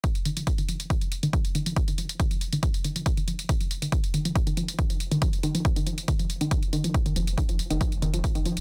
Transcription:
<<
  \new Staff \with { instrumentName = "Synth arpeggio sound" } { \clef bass \time 4/4 \key ees \mixolydian \tempo 4 = 139 r8 ees16 f16 r16 ees16 f16 r16 ees16 f16 r16 ees16 f16 r16 ees16 f16 | r16 ees16 f16 r16 ees16 f16 r16 ees16 f16 r16 ees16 f16 r16 ees16 f16 r16 | ees16 f16 r16 ees16 f16 r16 ees16 f16 r16 ees16 f16 r16 ees16 f16 r16 ees16 | f16 r16 ees16 f16 r16 ees16 f16 r16 ees16 f16 r16 ees16 r8 ees16 f16 |
r16 ees16 f16 r16 ees16 f16 r16 ees16 f16 r16 ees16 f16 r16 ees16 f16 r16 | }
  \new Staff \with { instrumentName = "Sub bass" } { \clef bass \time 4/4 \key ees \mixolydian r1 | r1 | r1 | r1 |
r16 f,,16 f,,16 f,,16 r16 f,,16 r16 f,,16 r16 f,,16 f,,16 f,,16 r16 f,,16 r16 f,,16 | }
  \new DrumStaff \with { instrumentName = "Drums" } \drummode { \time 4/4 <hh bd>16 hh16 hh16 hh16 <hh bd>16 hh16 hh16 hh16 <hh bd>16 hh16 hh16 hh16 <hh bd>16 hh16 hh16 hh16 | <hh bd>16 hh16 hh16 hh16 <hh bd>16 hh16 hh16 hh16 <hh bd>16 hh16 hh16 hh16 <hh bd>16 hh16 hh16 hh16 | <hh bd>16 hh16 hh16 hh16 <hh bd>16 hh16 hh16 hh16 <hh bd>16 hh16 hh16 hh16 <hh bd>16 hh16 hh16 hh16 | <hh bd>16 hh16 hh16 hh16 <hh bd>16 hh16 hh16 hh16 <hh bd>16 hh16 hh16 hh16 <hh bd>16 hh16 hh16 hh16 |
<hh bd>16 hh16 hh16 hh16 <hh bd>16 hh16 hh16 hh16 <hh bd>16 hh16 hh16 hh16 <hh bd>16 hh16 hh16 hh16 | }
>>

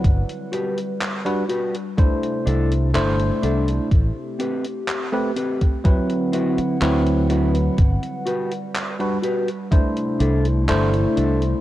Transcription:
<<
  \new Staff \with { instrumentName = "Clean electric guitar" } { \time 4/4 \key g \major \tempo 4 = 62 r8 <fis' g' b'>16 r8. <fis' g' b'>16 r8. <d' e' a'>16 r8. <d' e' a'>16 r16 | r8 <c' g' b'>16 r8. <c' g' b'>16 r8. <c' e' fis' b'>16 r8. <c' e' fis' b'>16 r16 | r8 <fis' g' b'>16 r8. <fis' g' b'>16 r8. <d' e' a'>16 r8. <d' e' a'>16 r16 | }
  \new Staff \with { instrumentName = "Tine electric piano" } { \time 4/4 \key g \major r4 r16 <g d' fis' b'>16 r8 <a d' e' c''>4 <a d' e' c''>4 | r4 r16 <a c' g' b'>16 r8 <fis c' e' b'>4 <fis c' e' b'>4 | r4 r16 <g d' fis' b'>16 r8 <a d' e' c''>4 <a d' e' c''>4 | }
  \new Staff \with { instrumentName = "Ambient pad" } { \time 4/4 \key g \major << { <b' fis''>2 <c d' e'>2 | <c' g'>2 <b' fis''>2~ | <b' fis''>2 <c d' e'>2 | } \\ { g2 a2~ | a2 <d e'>2 | g2 a2 | } >> }
  \new Staff \with { instrumentName = "Fingered electric bass" } { \clef bass \time 4/4 \key g \major g,,8 r2 c,8 g,,8 c,8 | a,,8 r2 r8 d,4 | g,,8 r2 c,8 g,,8 c,8 | }
  \new DrumStaff \with { instrumentName = "Drums" } \drummode { \time 4/4 <hh bd>16 hh16 hh16 hh16 <hc hh>16 hh16 hh16 hh16 <hh bd>16 hh16 hh16 hh16 <hc hh>16 hh16 hh16 hh16 | <hh bd>8 hh16 hh16 <hc hh>8 hh16 <hh bd>16 <hh bd>16 hh16 hh16 hh16 <hc hh>16 hh16 hh16 hh16 | <hh bd>16 hh16 hh16 hh16 <hc hh>16 hh16 hh16 hh16 <hh bd>16 hh16 hh16 hh16 <hc hh>16 hh16 hh16 hh16 | }
>>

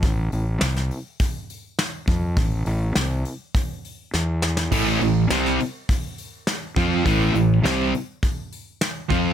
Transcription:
<<
  \new Staff \with { instrumentName = "Distorted electric guitar" } { \clef bass \time 4/4 \key a \minor \tempo 4 = 103 r1 | r1 | <a, e a>8 <a, e>8 <c g c'>8 r2 <f c' f'>8 | <a, e a>8 <a, e>8 <c g c'>8 r2 <f c' f'>8 | }
  \new Staff \with { instrumentName = "Overdriven electric guitar" } { \clef bass \time 4/4 \key a \minor r1 | r1 | <a, e a>8 <a, e>8 <c g c'>8 r2 <f c' f'>8 | <a, e a>8 <a, e>8 <c g c'>8 r2 <f c' f'>8 | }
  \new Staff \with { instrumentName = "Fingered electric bass" } { \clef bass \time 4/4 \key a \minor a,,8 a,,8 c,8 r2 f,8 | a,,8 a,,8 c,8 r4. e,4 | a,,8 a,,8 c,8 r2 f,8 | a,,8 a,,8 c,8 r2 f,8 | }
  \new DrumStaff \with { instrumentName = "Drums" } \drummode { \time 4/4 <hho bd>8 hho8 <hho sn>16 sn16 hho8 <hho bd>8 hho8 <hho sn>8 <hho bd>8 | <hho bd>8 hho8 <hho sn>8 hho8 <hho bd>8 hho8 sn8 sn16 sn16 | <cymc hho bd>8 hho8 <hho sn>16 sn16 hho8 <hho bd>8 hho8 <hho sn>8 <hho bd>8 | <hho bd>8 hho8 <hho sn>8 hho8 <hho bd>8 hho8 <hho sn>8 <hho bd>8 | }
>>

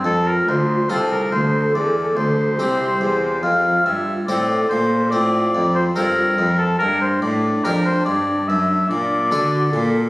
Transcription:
<<
  \new Staff \with { instrumentName = "Oboe" } { \time 4/4 \key f \major \tempo 4 = 71 a'16 bes'16 c''8 a'16 bes'16 c''8 d''8 c''4. | f''8 e''8 d''8 c''8 d''8. c''16 bes'8. a'16 | bes'16 c''16 d''8 bes'16 c''16 d''8 e''8 d''4~ d''16 r16 | }
  \new Staff \with { instrumentName = "Flute" } { \time 4/4 \key f \major f'4 a'2 g'4 | f'4 a'4 f'4. r8 | d'2. fis'8 a'8 | }
  \new Staff \with { instrumentName = "Harpsichord" } { \time 4/4 \key f \major r4 <c' f'>4 r4 <c' g'>4 | r4 <c' a'>4 c'4 <c' a'>4 | r4 <d' g'>4 r4 <d' a'>4 | }
  \new Staff \with { instrumentName = "Harpsichord" } { \clef bass \time 4/4 \key f \major f,8 d,8 c,8 d,8 e,8 d,8 c,8 e,8 | f,8 g,8 a,8 bes,8 a,8 f,8 g,8 f,8 | g,8 a,8 f,8 g,8 fis,8 bes,8 d8 bes,8 | }
  \new Staff \with { instrumentName = "Cello" } { \clef bass \time 4/4 \key f \major f,8 d,8 c,8 d,8 e,8 d,8 c,8 e,8 | f,8 g,8 a,8 bes,8 a,8 f,8 g,8 f,8 | g,8 a,8 f,8 g,8 fis,8 bes,8 d8 bes,8 | }
>>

